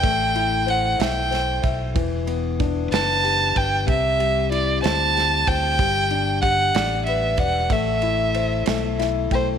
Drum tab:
RD |xxxxxx|xxxxxx|xxxxxx|xxxxxx|
SD |---oo-|---o--|---oo-|---o--|
BD |o----o|o-o--o|o----o|o-o--o|

RD |xxxxxx|
SD |---oo-|
BD |o----o|